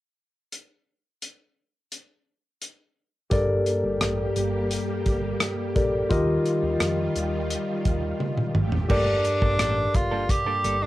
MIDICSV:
0, 0, Header, 1, 8, 480
1, 0, Start_track
1, 0, Key_signature, -2, "minor"
1, 0, Tempo, 697674
1, 361, Time_signature, 4, 2, 24, 8
1, 7474, End_track
2, 0, Start_track
2, 0, Title_t, "Tine electric piano"
2, 0, Program_c, 0, 4
2, 2272, Note_on_c, 0, 67, 60
2, 2278, Note_on_c, 0, 69, 57
2, 2280, Note_on_c, 0, 43, 59
2, 2282, Note_on_c, 0, 70, 58
2, 2288, Note_on_c, 0, 74, 69
2, 2404, Control_c, 0, 64, 127
2, 2973, Note_off_c, 0, 43, 0
2, 3929, Note_off_c, 0, 67, 0
2, 3932, Note_off_c, 0, 69, 0
2, 3934, Note_off_c, 0, 70, 0
2, 3937, Note_off_c, 0, 74, 0
2, 3954, Note_on_c, 0, 67, 48
2, 3958, Note_on_c, 0, 69, 43
2, 3960, Note_on_c, 0, 70, 44
2, 3962, Note_on_c, 0, 74, 51
2, 4189, Note_off_c, 0, 67, 0
2, 4193, Note_on_c, 0, 65, 62
2, 4195, Note_off_c, 0, 70, 0
2, 4198, Note_on_c, 0, 67, 56
2, 4199, Note_off_c, 0, 69, 0
2, 4200, Note_on_c, 0, 51, 66
2, 4202, Note_off_c, 0, 74, 0
2, 4203, Note_on_c, 0, 70, 58
2, 4208, Note_on_c, 0, 75, 71
2, 4209, Control_c, 0, 64, 0
2, 4314, Control_c, 0, 64, 127
2, 4893, Note_off_c, 0, 51, 0
2, 5850, Note_off_c, 0, 65, 0
2, 5852, Note_off_c, 0, 67, 0
2, 5855, Note_off_c, 0, 70, 0
2, 5857, Note_off_c, 0, 75, 0
2, 5890, Control_c, 0, 64, 0
2, 6114, Note_on_c, 0, 67, 61
2, 6120, Note_on_c, 0, 69, 52
2, 6122, Note_on_c, 0, 43, 57
2, 6125, Note_on_c, 0, 70, 52
2, 6130, Note_on_c, 0, 74, 66
2, 6233, Control_c, 0, 64, 127
2, 6814, Note_off_c, 0, 43, 0
2, 7474, Note_off_c, 0, 67, 0
2, 7474, Note_off_c, 0, 69, 0
2, 7474, Note_off_c, 0, 70, 0
2, 7474, Note_off_c, 0, 74, 0
2, 7474, End_track
3, 0, Start_track
3, 0, Title_t, "Tenor saxophone"
3, 0, Program_c, 1, 66
3, 6132, Note_on_c, 1, 62, 104
3, 6850, Note_on_c, 1, 65, 90
3, 6860, Note_off_c, 1, 62, 0
3, 7089, Note_on_c, 1, 67, 101
3, 7099, Note_off_c, 1, 65, 0
3, 7448, Note_on_c, 1, 62, 90
3, 7458, Note_off_c, 1, 67, 0
3, 7474, Note_off_c, 1, 62, 0
3, 7474, End_track
4, 0, Start_track
4, 0, Title_t, "Clean electric guitar"
4, 0, Program_c, 2, 27
4, 6121, Note_on_c, 2, 55, 71
4, 6124, Note_on_c, 2, 58, 77
4, 6126, Note_on_c, 2, 62, 78
4, 6129, Note_on_c, 2, 69, 79
4, 6223, Note_off_c, 2, 55, 0
4, 6224, Note_off_c, 2, 58, 0
4, 6225, Note_off_c, 2, 62, 0
4, 6227, Note_off_c, 2, 69, 0
4, 6480, Note_on_c, 2, 69, 53
4, 6483, Note_on_c, 2, 62, 49
4, 6487, Note_on_c, 2, 58, 42
4, 6489, Note_on_c, 2, 55, 42
4, 6560, Note_off_c, 2, 69, 0
4, 6562, Note_off_c, 2, 62, 0
4, 6564, Note_off_c, 2, 58, 0
4, 6565, Note_off_c, 2, 55, 0
4, 6599, Note_on_c, 2, 55, 81
4, 6604, Note_on_c, 2, 58, 74
4, 6606, Note_on_c, 2, 62, 83
4, 6608, Note_on_c, 2, 69, 83
4, 6702, Note_off_c, 2, 55, 0
4, 6704, Note_off_c, 2, 58, 0
4, 6705, Note_off_c, 2, 62, 0
4, 6706, Note_off_c, 2, 69, 0
4, 6958, Note_on_c, 2, 69, 56
4, 6962, Note_on_c, 2, 62, 54
4, 6964, Note_on_c, 2, 58, 46
4, 6966, Note_on_c, 2, 55, 47
4, 7039, Note_off_c, 2, 69, 0
4, 7041, Note_off_c, 2, 62, 0
4, 7042, Note_off_c, 2, 58, 0
4, 7043, Note_off_c, 2, 55, 0
4, 7199, Note_on_c, 2, 69, 67
4, 7201, Note_on_c, 2, 62, 67
4, 7205, Note_on_c, 2, 58, 60
4, 7207, Note_on_c, 2, 55, 55
4, 7302, Note_off_c, 2, 69, 0
4, 7303, Note_off_c, 2, 62, 0
4, 7305, Note_off_c, 2, 58, 0
4, 7306, Note_off_c, 2, 55, 0
4, 7317, Note_on_c, 2, 55, 54
4, 7320, Note_on_c, 2, 58, 68
4, 7324, Note_on_c, 2, 62, 67
4, 7325, Note_on_c, 2, 69, 73
4, 7399, Note_off_c, 2, 55, 0
4, 7400, Note_off_c, 2, 58, 0
4, 7402, Note_off_c, 2, 62, 0
4, 7403, Note_off_c, 2, 69, 0
4, 7474, End_track
5, 0, Start_track
5, 0, Title_t, "String machine"
5, 0, Program_c, 3, 50
5, 2275, Note_on_c, 3, 55, 67
5, 2276, Note_on_c, 3, 58, 75
5, 2276, Note_on_c, 3, 67, 79
5, 4179, Note_off_c, 3, 55, 0
5, 4179, Note_off_c, 3, 58, 0
5, 4179, Note_off_c, 3, 67, 0
5, 4202, Note_on_c, 3, 51, 78
5, 4202, Note_on_c, 3, 55, 73
5, 4203, Note_on_c, 3, 65, 88
5, 5865, Note_off_c, 3, 51, 0
5, 5865, Note_off_c, 3, 55, 0
5, 5865, Note_off_c, 3, 65, 0
5, 5880, Note_on_c, 3, 46, 64
5, 5881, Note_on_c, 3, 57, 63
5, 5881, Note_on_c, 3, 67, 73
5, 6118, Note_off_c, 3, 46, 0
5, 6118, Note_off_c, 3, 67, 0
5, 6119, Note_off_c, 3, 57, 0
5, 7474, End_track
6, 0, Start_track
6, 0, Title_t, "Fretless electric bass"
6, 0, Program_c, 4, 35
6, 2280, Note_on_c, 4, 31, 82
6, 2460, Note_off_c, 4, 31, 0
6, 2641, Note_on_c, 4, 31, 74
6, 2731, Note_off_c, 4, 31, 0
6, 2761, Note_on_c, 4, 33, 75
6, 2941, Note_off_c, 4, 33, 0
6, 3002, Note_on_c, 4, 31, 75
6, 3271, Note_off_c, 4, 31, 0
6, 3482, Note_on_c, 4, 31, 74
6, 3662, Note_off_c, 4, 31, 0
6, 3962, Note_on_c, 4, 34, 75
6, 4142, Note_off_c, 4, 34, 0
6, 4200, Note_on_c, 4, 39, 91
6, 4380, Note_off_c, 4, 39, 0
6, 4559, Note_on_c, 4, 39, 80
6, 4650, Note_off_c, 4, 39, 0
6, 4680, Note_on_c, 4, 41, 78
6, 4860, Note_off_c, 4, 41, 0
6, 4922, Note_on_c, 4, 39, 86
6, 5192, Note_off_c, 4, 39, 0
6, 5404, Note_on_c, 4, 39, 75
6, 5583, Note_off_c, 4, 39, 0
6, 5880, Note_on_c, 4, 31, 89
6, 6061, Note_off_c, 4, 31, 0
6, 6121, Note_on_c, 4, 31, 91
6, 6301, Note_off_c, 4, 31, 0
6, 6479, Note_on_c, 4, 31, 80
6, 6570, Note_off_c, 4, 31, 0
6, 6602, Note_on_c, 4, 33, 88
6, 6781, Note_off_c, 4, 33, 0
6, 6842, Note_on_c, 4, 31, 83
6, 7112, Note_off_c, 4, 31, 0
6, 7323, Note_on_c, 4, 31, 82
6, 7474, Note_off_c, 4, 31, 0
6, 7474, End_track
7, 0, Start_track
7, 0, Title_t, "Muted clean electric guitar strokes"
7, 6363, Note_on_c, 9, 29, 40
7, 6432, Note_off_c, 9, 29, 0
7, 6840, Note_on_c, 9, 29, 35
7, 6909, Note_off_c, 9, 29, 0
7, 7080, Note_on_c, 9, 29, 40
7, 7148, Note_off_c, 9, 29, 0
7, 7441, Note_on_c, 9, 29, 41
7, 7474, Note_off_c, 9, 29, 0
7, 7474, End_track
8, 0, Start_track
8, 0, Title_t, "Drums"
8, 361, Note_on_c, 9, 42, 48
8, 430, Note_off_c, 9, 42, 0
8, 841, Note_on_c, 9, 42, 49
8, 910, Note_off_c, 9, 42, 0
8, 1320, Note_on_c, 9, 42, 49
8, 1389, Note_off_c, 9, 42, 0
8, 1800, Note_on_c, 9, 42, 50
8, 1869, Note_off_c, 9, 42, 0
8, 2278, Note_on_c, 9, 42, 71
8, 2280, Note_on_c, 9, 36, 90
8, 2347, Note_off_c, 9, 42, 0
8, 2349, Note_off_c, 9, 36, 0
8, 2520, Note_on_c, 9, 42, 56
8, 2588, Note_off_c, 9, 42, 0
8, 2758, Note_on_c, 9, 37, 94
8, 2758, Note_on_c, 9, 42, 82
8, 2827, Note_off_c, 9, 37, 0
8, 2827, Note_off_c, 9, 42, 0
8, 3000, Note_on_c, 9, 42, 55
8, 3069, Note_off_c, 9, 42, 0
8, 3239, Note_on_c, 9, 42, 85
8, 3308, Note_off_c, 9, 42, 0
8, 3480, Note_on_c, 9, 42, 57
8, 3482, Note_on_c, 9, 36, 68
8, 3549, Note_off_c, 9, 42, 0
8, 3551, Note_off_c, 9, 36, 0
8, 3718, Note_on_c, 9, 37, 106
8, 3719, Note_on_c, 9, 42, 89
8, 3786, Note_off_c, 9, 37, 0
8, 3788, Note_off_c, 9, 42, 0
8, 3962, Note_on_c, 9, 42, 59
8, 3963, Note_on_c, 9, 36, 78
8, 4031, Note_off_c, 9, 42, 0
8, 4032, Note_off_c, 9, 36, 0
8, 4200, Note_on_c, 9, 42, 72
8, 4201, Note_on_c, 9, 36, 100
8, 4269, Note_off_c, 9, 42, 0
8, 4270, Note_off_c, 9, 36, 0
8, 4442, Note_on_c, 9, 42, 54
8, 4510, Note_off_c, 9, 42, 0
8, 4680, Note_on_c, 9, 42, 83
8, 4681, Note_on_c, 9, 37, 92
8, 4749, Note_off_c, 9, 42, 0
8, 4750, Note_off_c, 9, 37, 0
8, 4923, Note_on_c, 9, 42, 61
8, 4992, Note_off_c, 9, 42, 0
8, 5163, Note_on_c, 9, 42, 91
8, 5231, Note_off_c, 9, 42, 0
8, 5403, Note_on_c, 9, 42, 61
8, 5404, Note_on_c, 9, 36, 73
8, 5471, Note_off_c, 9, 42, 0
8, 5473, Note_off_c, 9, 36, 0
8, 5643, Note_on_c, 9, 48, 47
8, 5712, Note_off_c, 9, 48, 0
8, 5762, Note_on_c, 9, 47, 46
8, 5831, Note_off_c, 9, 47, 0
8, 5881, Note_on_c, 9, 45, 65
8, 5950, Note_off_c, 9, 45, 0
8, 6000, Note_on_c, 9, 43, 68
8, 6069, Note_off_c, 9, 43, 0
8, 6121, Note_on_c, 9, 49, 81
8, 6122, Note_on_c, 9, 36, 99
8, 6190, Note_off_c, 9, 49, 0
8, 6191, Note_off_c, 9, 36, 0
8, 6361, Note_on_c, 9, 42, 56
8, 6430, Note_off_c, 9, 42, 0
8, 6480, Note_on_c, 9, 36, 82
8, 6549, Note_off_c, 9, 36, 0
8, 6599, Note_on_c, 9, 42, 87
8, 6600, Note_on_c, 9, 37, 99
8, 6668, Note_off_c, 9, 42, 0
8, 6669, Note_off_c, 9, 37, 0
8, 6842, Note_on_c, 9, 36, 77
8, 6842, Note_on_c, 9, 42, 60
8, 6910, Note_off_c, 9, 42, 0
8, 6911, Note_off_c, 9, 36, 0
8, 7081, Note_on_c, 9, 36, 83
8, 7082, Note_on_c, 9, 42, 90
8, 7150, Note_off_c, 9, 36, 0
8, 7151, Note_off_c, 9, 42, 0
8, 7323, Note_on_c, 9, 42, 63
8, 7392, Note_off_c, 9, 42, 0
8, 7474, End_track
0, 0, End_of_file